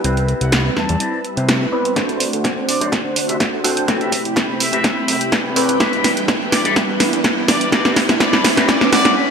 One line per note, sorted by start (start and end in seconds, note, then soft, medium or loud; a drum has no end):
0.00 1.69 G3 medium
0.00 0.52 C4 loud
0.00 1.93 E6 medium
0.04 0.34 C2 medium
0.04 1.70 C4 medium
0.04 0.52 E4 medium
0.04 1.70 E4 medium
0.04 0.53 B4 loud
0.04 1.70 B4 medium
0.04 1.95 B5 medium
0.04 closed hi-hat medium
0.17 closed hi-hat soft
0.28 closed hi-hat soft
0.41 0.70 C2 medium
0.41 0.61 F#5 medium
0.41 closed hi-hat medium
0.52 snare loud
0.52 closed hi-hat medium
0.77 0.87 E2 soft
0.77 1.25 A5 medium
0.77 snare medium
0.89 0.97 E2 medium
0.89 closed hi-hat medium
1.00 1.19 C4 medium
1.00 1.19 E4 medium
1.00 1.19 D5 loud
1.00 closed hi-hat medium
1.14 tambourine soft
1.25 closed hi-hat soft
1.37 1.66 C3 loud
1.37 1.55 C4 medium
1.37 1.55 E4 medium
1.37 1.55 B4 medium
1.37 closed hi-hat medium
1.37 tambourine medium
1.49 snare loud
1.49 closed hi-hat medium
1.72 1.93 G3 medium
1.72 1.94 B3 medium
1.72 1.94 C4 medium
1.72 1.94 E4 medium
1.72 1.94 B4 loud
1.72 muted clean electric guitar stroke soft
1.84 muted clean electric guitar stroke medium
1.84 closed hi-hat medium
1.96 2.26 D2 loud
1.96 3.61 A3 medium
1.96 3.62 C4 medium
1.96 2.27 D4 loud
1.96 3.86 D4 medium
1.96 3.62 D4 medium
1.96 2.27 F#4 medium
1.96 3.62 F#4 medium
1.96 3.87 C5 medium
1.96 2.27 C5 loud
1.96 3.62 C5 medium
1.96 3.86 F#5 medium
1.96 kick loud
1.96 snare soft
1.96 closed hi-hat medium
1.96 riser medium
2.09 closed hi-hat soft
2.20 open hi-hat loud
2.33 2.62 D2 medium
2.33 closed hi-hat medium
2.44 kick loud
2.44 snare medium
2.44 closed hi-hat medium
2.57 muted clean electric guitar stroke soft
2.68 2.88 D5 medium
2.68 muted clean electric guitar stroke medium
2.68 open hi-hat medium
2.80 2.88 F#2 medium
2.80 2.92 D4 medium
2.80 2.92 F#4 medium
2.80 2.92 C5 loud
2.80 closed hi-hat medium
2.92 kick loud
2.92 snare medium
2.92 closed hi-hat medium
3.04 muted clean electric guitar stroke loud
3.16 muted clean electric guitar stroke soft
3.16 open hi-hat loud
3.29 3.36 C2 loud
3.29 3.36 E5 medium
3.29 closed hi-hat medium
3.40 3.49 E5 medium
3.40 muted clean electric guitar stroke medium
3.40 kick loud
3.40 snare medium
3.40 closed hi-hat medium
3.53 3.60 D2 medium
3.53 muted clean electric guitar stroke soft
3.64 3.73 D1 medium
3.64 3.85 A3 loud
3.64 3.86 C4 medium
3.64 3.86 D4 medium
3.64 3.86 F#4 medium
3.64 3.86 C5 loud
3.64 open hi-hat medium
3.77 closed hi-hat medium
3.87 4.18 A1 loud
3.87 5.53 A3 medium
3.87 5.78 C4 medium
3.87 5.54 C4 medium
3.87 4.19 C4 loud
3.87 5.54 E4 medium
3.87 4.19 G4 medium
3.87 5.54 G4 medium
3.87 4.19 B4 loud
3.87 7.68 G5 medium
3.87 5.78 B5 medium
3.87 kick loud
3.87 snare medium
3.87 closed hi-hat medium
4.01 4.08 E5 medium
4.01 closed hi-hat soft
4.12 4.20 E5 medium
4.12 kick medium
4.12 open hi-hat loud
4.25 4.54 A1 medium
4.25 closed hi-hat medium
4.36 kick loud
4.36 snare medium
4.36 closed hi-hat medium
4.49 muted clean electric guitar stroke soft
4.60 4.70 C2 soft
4.60 5.28 E5 loud
4.60 muted clean electric guitar stroke medium
4.60 open hi-hat loud
4.72 4.80 C2 medium
4.72 4.84 C4 loud
4.72 4.84 G4 medium
4.72 4.85 B4 loud
4.72 closed hi-hat medium
4.84 kick loud
4.84 snare medium
4.84 closed hi-hat medium
4.97 muted clean electric guitar stroke loud
5.08 5.16 F#2 medium
5.08 muted clean electric guitar stroke soft
5.08 open hi-hat loud
5.21 5.30 E2 soft
5.21 closed hi-hat medium
5.32 5.71 E2 medium
5.32 muted clean electric guitar stroke medium
5.32 kick loud
5.32 snare medium
5.32 closed hi-hat medium
5.45 muted clean electric guitar stroke soft
5.56 5.77 A3 loud
5.56 5.77 C4 medium
5.56 5.78 E4 medium
5.56 5.78 G4 medium
5.56 5.78 B4 loud
5.56 open hi-hat medium
5.69 5.76 A1 medium
5.69 closed hi-hat medium
5.79 6.10 G1 loud
5.79 6.74 G3 medium
5.79 6.74 B3 medium
5.79 6.74 D4 medium
5.79 6.11 E4 loud
5.79 7.70 E4 medium
5.79 6.75 E4 medium
5.79 6.11 G4 loud
5.79 9.13 B4 medium
5.79 6.11 B4 loud
5.79 6.75 B4 medium
5.79 kick loud
5.79 snare medium
5.79 closed hi-hat medium
5.93 closed hi-hat soft
6.04 snare medium
6.04 open hi-hat loud
6.17 6.46 G1 medium
6.17 closed hi-hat medium
6.28 kick loud
6.28 snare medium
6.28 closed hi-hat medium
6.41 muted clean electric guitar stroke soft
6.52 6.72 D5 medium
6.52 muted clean electric guitar stroke medium
6.52 snare medium
6.52 open hi-hat loud
6.65 6.73 B1 medium
6.65 6.76 E4 medium
6.65 6.76 G4 medium
6.65 6.76 A4 loud
6.65 closed hi-hat medium
6.75 7.70 G3 medium
6.75 7.70 B3 medium
6.75 7.70 D4 medium
6.75 7.71 E4 medium
6.75 7.71 B4 medium
6.75 kick loud
6.75 snare medium
6.75 closed hi-hat medium
6.88 muted clean electric guitar stroke loud
7.00 muted clean electric guitar stroke soft
7.00 snare medium
7.00 open hi-hat loud
7.13 7.20 E2 loud
7.13 closed hi-hat soft
7.24 muted clean electric guitar stroke medium
7.24 kick loud
7.24 snare medium
7.24 closed hi-hat medium
7.37 7.44 G1 medium
7.37 muted clean electric guitar stroke soft
7.48 7.57 G2 medium
7.48 7.68 D5 medium
7.48 snare medium
7.48 open hi-hat loud
7.61 closed hi-hat medium
7.72 8.02 C2 loud
7.72 8.18 G3 medium
7.72 8.03 C4 loud
7.72 8.19 D4 medium
7.72 8.03 E4 loud
7.72 8.19 E4 medium
7.72 8.03 B4 loud
7.72 8.19 B4 medium
7.72 7.92 D5 medium
7.72 9.15 E5 medium
7.72 kick loud
7.72 snare medium
7.72 closed hi-hat medium
7.85 snare medium
7.85 closed hi-hat soft
7.96 kick medium
7.96 snare medium
7.96 open hi-hat loud
8.09 8.38 C2 medium
8.09 snare medium
8.09 closed hi-hat soft
8.20 8.66 G3 medium
8.20 8.67 D4 medium
8.20 8.67 E4 medium
8.20 8.40 D5 loud
8.20 8.67 B5 medium
8.20 kick loud
8.20 snare loud
8.20 closed hi-hat medium
8.33 snare medium
8.44 muted clean electric guitar stroke medium
8.44 snare loud
8.44 open hi-hat loud
8.57 8.65 E2 loud
8.57 8.68 C4 medium
8.57 8.68 E4 medium
8.57 8.69 B4 loud
8.57 snare medium
8.57 closed hi-hat soft
8.67 8.90 G3 medium
8.67 8.90 B3 medium
8.67 8.90 D4 medium
8.67 8.91 E4 medium
8.67 8.91 B4 medium
8.67 8.88 D5 medium
8.67 kick loud
8.67 snare loud
8.67 closed hi-hat medium
8.81 muted clean electric guitar stroke loud
8.81 snare medium
8.92 9.14 G3 medium
8.92 9.14 B3 medium
8.92 9.15 D4 medium
8.92 9.15 E4 medium
8.92 9.15 B4 medium
8.92 9.12 D5 loud
8.92 9.15 F#5 medium
8.92 muted clean electric guitar stroke soft
8.92 snare loud
8.92 open hi-hat loud
9.05 snare medium
9.05 closed hi-hat soft
9.16 9.30 E5 medium